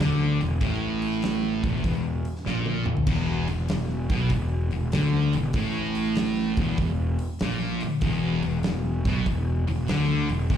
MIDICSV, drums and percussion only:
0, 0, Header, 1, 2, 480
1, 0, Start_track
1, 0, Tempo, 617920
1, 482, Time_signature, 4, 2, 24, 8
1, 8214, End_track
2, 0, Start_track
2, 0, Title_t, "Drums"
2, 5, Note_on_c, 9, 38, 110
2, 82, Note_off_c, 9, 38, 0
2, 319, Note_on_c, 9, 46, 55
2, 396, Note_off_c, 9, 46, 0
2, 474, Note_on_c, 9, 36, 113
2, 476, Note_on_c, 9, 46, 81
2, 552, Note_off_c, 9, 36, 0
2, 554, Note_off_c, 9, 46, 0
2, 792, Note_on_c, 9, 46, 59
2, 870, Note_off_c, 9, 46, 0
2, 951, Note_on_c, 9, 46, 79
2, 961, Note_on_c, 9, 38, 103
2, 1029, Note_off_c, 9, 46, 0
2, 1039, Note_off_c, 9, 38, 0
2, 1271, Note_on_c, 9, 36, 114
2, 1272, Note_on_c, 9, 46, 62
2, 1349, Note_off_c, 9, 36, 0
2, 1349, Note_off_c, 9, 46, 0
2, 1430, Note_on_c, 9, 36, 87
2, 1430, Note_on_c, 9, 46, 79
2, 1508, Note_off_c, 9, 36, 0
2, 1508, Note_off_c, 9, 46, 0
2, 1748, Note_on_c, 9, 46, 50
2, 1825, Note_off_c, 9, 46, 0
2, 1829, Note_on_c, 9, 38, 30
2, 1907, Note_off_c, 9, 38, 0
2, 1912, Note_on_c, 9, 38, 63
2, 1990, Note_off_c, 9, 38, 0
2, 2065, Note_on_c, 9, 48, 62
2, 2143, Note_off_c, 9, 48, 0
2, 2220, Note_on_c, 9, 45, 96
2, 2297, Note_off_c, 9, 45, 0
2, 2305, Note_on_c, 9, 43, 89
2, 2382, Note_on_c, 9, 49, 93
2, 2383, Note_off_c, 9, 43, 0
2, 2384, Note_on_c, 9, 36, 106
2, 2459, Note_off_c, 9, 49, 0
2, 2461, Note_off_c, 9, 36, 0
2, 2701, Note_on_c, 9, 46, 55
2, 2779, Note_off_c, 9, 46, 0
2, 2863, Note_on_c, 9, 46, 85
2, 2873, Note_on_c, 9, 38, 105
2, 2941, Note_off_c, 9, 46, 0
2, 2951, Note_off_c, 9, 38, 0
2, 3181, Note_on_c, 9, 46, 64
2, 3184, Note_on_c, 9, 36, 112
2, 3259, Note_off_c, 9, 46, 0
2, 3261, Note_off_c, 9, 36, 0
2, 3337, Note_on_c, 9, 46, 74
2, 3341, Note_on_c, 9, 36, 81
2, 3415, Note_off_c, 9, 46, 0
2, 3419, Note_off_c, 9, 36, 0
2, 3657, Note_on_c, 9, 46, 51
2, 3734, Note_off_c, 9, 46, 0
2, 3822, Note_on_c, 9, 46, 89
2, 3832, Note_on_c, 9, 38, 116
2, 3900, Note_off_c, 9, 46, 0
2, 3910, Note_off_c, 9, 38, 0
2, 4142, Note_on_c, 9, 46, 61
2, 4220, Note_off_c, 9, 46, 0
2, 4298, Note_on_c, 9, 46, 84
2, 4303, Note_on_c, 9, 36, 111
2, 4376, Note_off_c, 9, 46, 0
2, 4381, Note_off_c, 9, 36, 0
2, 4622, Note_on_c, 9, 46, 60
2, 4700, Note_off_c, 9, 46, 0
2, 4781, Note_on_c, 9, 46, 87
2, 4791, Note_on_c, 9, 38, 112
2, 4859, Note_off_c, 9, 46, 0
2, 4869, Note_off_c, 9, 38, 0
2, 5103, Note_on_c, 9, 46, 63
2, 5106, Note_on_c, 9, 36, 106
2, 5180, Note_off_c, 9, 46, 0
2, 5184, Note_off_c, 9, 36, 0
2, 5265, Note_on_c, 9, 46, 76
2, 5267, Note_on_c, 9, 36, 96
2, 5342, Note_off_c, 9, 46, 0
2, 5345, Note_off_c, 9, 36, 0
2, 5583, Note_on_c, 9, 46, 60
2, 5661, Note_off_c, 9, 46, 0
2, 5744, Note_on_c, 9, 46, 76
2, 5754, Note_on_c, 9, 38, 109
2, 5822, Note_off_c, 9, 46, 0
2, 5832, Note_off_c, 9, 38, 0
2, 6063, Note_on_c, 9, 46, 59
2, 6141, Note_off_c, 9, 46, 0
2, 6223, Note_on_c, 9, 46, 76
2, 6229, Note_on_c, 9, 36, 107
2, 6301, Note_off_c, 9, 46, 0
2, 6306, Note_off_c, 9, 36, 0
2, 6546, Note_on_c, 9, 46, 57
2, 6624, Note_off_c, 9, 46, 0
2, 6704, Note_on_c, 9, 46, 72
2, 6714, Note_on_c, 9, 38, 107
2, 6782, Note_off_c, 9, 46, 0
2, 6792, Note_off_c, 9, 38, 0
2, 7032, Note_on_c, 9, 36, 110
2, 7033, Note_on_c, 9, 46, 60
2, 7110, Note_off_c, 9, 36, 0
2, 7111, Note_off_c, 9, 46, 0
2, 7194, Note_on_c, 9, 36, 83
2, 7196, Note_on_c, 9, 46, 76
2, 7272, Note_off_c, 9, 36, 0
2, 7273, Note_off_c, 9, 46, 0
2, 7517, Note_on_c, 9, 46, 57
2, 7595, Note_off_c, 9, 46, 0
2, 7675, Note_on_c, 9, 46, 81
2, 7685, Note_on_c, 9, 38, 115
2, 7753, Note_off_c, 9, 46, 0
2, 7763, Note_off_c, 9, 38, 0
2, 7996, Note_on_c, 9, 46, 56
2, 8074, Note_off_c, 9, 46, 0
2, 8156, Note_on_c, 9, 36, 101
2, 8157, Note_on_c, 9, 46, 77
2, 8214, Note_off_c, 9, 36, 0
2, 8214, Note_off_c, 9, 46, 0
2, 8214, End_track
0, 0, End_of_file